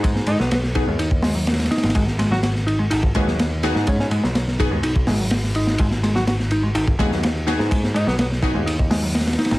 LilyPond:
<<
  \new Staff \with { instrumentName = "Synth stab" } { \time 4/4 \key gis \minor \tempo 4 = 125 r4. <b fis' gis'>8 r2 | r2 r8 <b fis' gis'>4 <b fis' gis'>8 | r4. <b fis' gis'>8 r2 | r2 r8 <b fis' gis'>4 <b fis' gis'>8 |
r4. <b fis' gis'>8 r2 | }
  \new Staff \with { instrumentName = "Alto saxophone" } { \time 4/4 \key gis \minor r8 dis'16 b16 b16 r2 r8. | r8. fis'16 fis'16 r2 r8. | cis'16 cis'16 r2. r8 | r8. fis'16 fis'16 r2 r8. |
r8 dis'16 b16 b16 r2 r8. | }
  \new Staff \with { instrumentName = "Picked electric bass" } { \clef bass \time 4/4 \key gis \minor gis16 r16 gis16 fis16 r8 dis'16 gis16 dis'16 r16 gis16 fis16 r8 dis'8 | gis16 r16 gis16 fis16 r8 dis'16 gis16 dis'16 r16 gis16 fis16 r8 dis'8 | gis16 r16 gis16 fis16 r8 dis'16 gis16 dis'16 r16 gis16 fis16 r8 dis'8 | gis16 r16 gis16 fis16 r8 dis'16 gis16 dis'16 r16 gis16 fis16 r8 dis'8 |
gis16 r16 gis16 fis16 r8 dis'16 gis16 dis'16 r16 gis16 fis16 r8 dis'8 | }
  \new Staff \with { instrumentName = "Picked electric bass" } { \clef bass \time 4/4 \key gis \minor gis,8. b,,4 dis,4.~ dis,16 r16 gis,,16 | gis,,2 gis,,8 dis,4~ dis,16 gis,16~ | gis,8. b,,4 dis,16 b,,8 gis,,4. | gis,,2 gis,,8 dis,4~ dis,16 gis,16~ |
gis,8. b,,4 dis,4.~ dis,16 r16 gis,,16 | }
  \new DrumStaff \with { instrumentName = "Drums" } \drummode { \time 4/4 <bd cymr>16 sn16 cymr16 sn16 <cymr sn>16 sn16 <bd cymr>8 cymr16 bd16 <hho sn>8 <cymr sn>32 <cymr sn>32 <cymr sn>32 <cymr sn>32 <cymr sn>32 <cymr sn>32 <cymr sn>32 <cymr sn>32 | <bd cymr>16 sn16 <cymr sn>16 sn16 <cymr sn>16 sn16 cymr8 cymr16 bd16 <bd cymr>16 sn16 <cymr sn>8 <cymr sn>16 sn16 | <bd cymr>16 sn16 cymr16 sn16 <cymr sn>16 sn16 <bd cymr>8 cymr16 bd16 <hho sn>8 <cymr sn>16 sn16 cymr16 sn16 | <bd cymr>16 sn16 <cymr sn>16 sn16 <cymr sn>16 sn16 cymr8 cymr16 bd16 <bd cymr>16 sn16 <cymr sn>8 <cymr sn>16 sn16 |
<bd cymr>16 sn16 cymr16 sn16 <cymr sn>16 sn16 <bd cymr>8 cymr16 bd16 <hho sn>8 <cymr sn>32 <cymr sn>32 <cymr sn>32 <cymr sn>32 <cymr sn>32 <cymr sn>32 <cymr sn>16 | }
>>